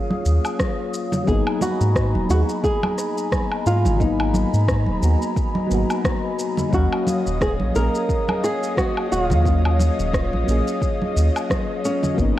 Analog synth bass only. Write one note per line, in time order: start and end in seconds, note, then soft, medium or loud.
0.25 0.39 D#2 medium
1.27 1.41 G#1 medium
1.81 2.16 G#2 medium
2.15 2.25 D#1 medium
2.30 2.43 D#2 medium
3.66 3.87 G#2 medium
3.85 4.45 G#1 medium
4.53 4.89 G#2 medium
4.88 4.98 D#1 medium
5.03 5.16 D#2 medium
5.71 5.84 G#1 medium
6.73 6.87 D#2 loud
7.26 7.62 D#1 medium
7.61 7.71 A#1 medium
7.75 7.89 A#1 medium
9.11 9.32 D#1 medium
9.31 9.90 D#2 medium
9.99 10.35 D#1 medium
10.33 10.44 A#1 medium
10.48 10.62 A#1 loud
11.16 11.30 D#2 medium
12.18 12.32 G#1 loud